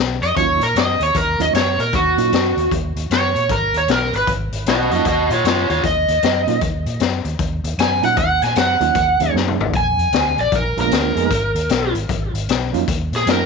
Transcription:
Already playing: B1
0.22 F2 D#5, closed hi-hat
0.36 D#2 F#3 A#3 C#4 D#4 F4 C#5, kick, closed hi-hat
0.60 A#2 A#4, closed hi-hat
0.75 F#2 D#5, snare, closed hi-hat
1.00 D#2 C#5, closed hi-hat
1.15 D#2 A#4, kick, closed hi-hat
1.39 D#2 F#3 A#3 C#4 D#4 F4 D#5, closed hi-hat
1.53 F#2 C#5, snare, closed hi-hat
1.79 A#2 A#4, closed hi-hat
1.93 D#2 F#4, kick, closed hi-hat
2.17 A#2 F#3 A#3 C#4 D#4 F4, closed hi-hat
2.32 F#2, snare, closed hi-hat
2.57 D#2, closed hi-hat
2.71 D#2, kick, closed hi-hat
2.96 D#2, closed hi-hat
3.10 F#2 C#5, snare, closed hi-hat
3.35 A#2, closed hi-hat
3.49 G#1 A#4, kick, closed hi-hat
3.74 D#2 C#5, closed hi-hat
3.88 B1 A#4, snare, closed hi-hat
4.13 G#1 B4, closed hi-hat
4.27 G#1, kick, closed hi-hat
4.52 G#1, closed hi-hat
4.66 B1 F#4 D#5, snare, closed hi-hat
4.91 F2 F#3 A#3 C#4 D#4 F4 F#4 D#5, closed hi-hat
5.05 D#2 F#4 D#5, kick, closed hi-hat
5.30 A#2 F4 C#5, closed hi-hat
5.44 F#2 F4 C#5, snare, closed hi-hat
5.70 D#2 F4 C#5, closed hi-hat
5.84 D#2 D#5, kick, closed hi-hat
6.08 D#2, closed hi-hat
6.23 F#2, snare, closed hi-hat
6.47 A#2 F#3 A#3 C#4 D#4 F4, closed hi-hat
6.61 D#2, kick, closed hi-hat
6.86 A#2, closed hi-hat
7.00 F#2, snare, closed hi-hat
7.24 D#2, closed hi-hat
7.39 D#2, kick, closed hi-hat
7.64 D#2, closed hi-hat
7.78 F#2 G#5, snare, closed hi-hat
8.02 A#2 F#3 A#3 C#4 D#4 F4 F#5, closed hi-hat
8.17 D#2 F#5, kick, closed hi-hat
8.42 A#2 G#5, snare, closed hi-hat
8.55 F#2 F#5, snare, closed hi-hat
8.80 D#2 F#3 A#3 C#4 D#4 F4, closed hi-hat
8.95 D#2, kick, closed hi-hat
9.20 D#2 F#3 A#3 C#4 D#4 G#4, closed hi-hat
9.34 F#2, snare
9.48 mid tom
9.59 G#1, floor tom
9.73 A#1 G#5, kick, closed hi-hat
9.98 F2, closed hi-hat
10.12 D2, snare, closed hi-hat
10.37 A#1 D5, closed hi-hat
10.52 A#1 A#4, kick, closed hi-hat
10.77 A#1 G#3 A#3 B3 D4 F4 A#4, closed hi-hat
10.91 D2, snare, closed hi-hat
11.16 F2 G#3 A#3 B3 D#4 G#4, closed hi-hat
11.31 G#1, kick, closed hi-hat
11.55 D#2, closed hi-hat
11.69 B1, snare, closed hi-hat
11.95 G#1, closed hi-hat
12.09 G#1, kick, closed hi-hat
12.33 G#1, closed hi-hat
12.49 B1, snare, closed hi-hat
12.73 F2 F#3 A#3 C#4 D#4 F4, closed hi-hat
12.88 D#2, kick, closed hi-hat
13.12 A#2 G#4, snare, closed hi-hat
13.26 F#2 F#3 A#3 C#4 D#4 F4, snare, closed hi-hat
13.31 A#4

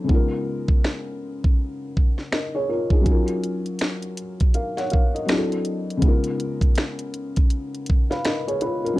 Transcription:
Already playing: F#3 C4 D4 E4 A4
0.04 C#3 G#3
0.08 B3 D#4, kick
0.13 F4 A#4
0.68 kick
0.84 finger snap, snare
1.44 kick
1.97 kick
2.18 snare
2.32 A#4 D#5, finger snap, snare
2.55 G#4 C#5
2.69 F4 A#4
2.90 D#4 G#4, kick
3.01 F#3 C#4
3.06 D#4 F4, kick, closed hi-hat
3.12 A#4
3.28 closed hi-hat
3.44 closed hi-hat
3.66 closed hi-hat
3.79 finger snap, snare, closed hi-hat
4.03 closed hi-hat
4.17 closed hi-hat
4.40 kick, closed hi-hat
4.54 A#4 F5, closed hi-hat
4.77 C#5 F#5, snare, closed hi-hat
4.90 A#4 F5, kick, closed hi-hat
5.14 A#4 D#5, closed hi-hat
5.26 F#3 C4 D4, finger snap, snare, closed hi-hat
5.30 E4 G#4
5.38 A4
5.52 closed hi-hat
5.65 closed hi-hat
5.90 closed hi-hat
5.97 C#3 G#3
6.01 B3 D#4, kick, closed hi-hat
6.06 F4 A#4
6.24 closed hi-hat
6.40 closed hi-hat
6.61 kick, closed hi-hat
6.75 finger snap, snare, closed hi-hat
6.99 closed hi-hat
7.14 closed hi-hat
7.36 kick, closed hi-hat
7.50 closed hi-hat
7.75 closed hi-hat
7.86 kick, closed hi-hat
8.10 B4 F5, snare, closed hi-hat
8.25 A#4 D#5, finger snap, snare, closed hi-hat
8.48 G#4 C#5, closed hi-hat
8.61 F4 B4, closed hi-hat
8.84 F4 A#4, closed hi-hat
8.93 F#3 C#4

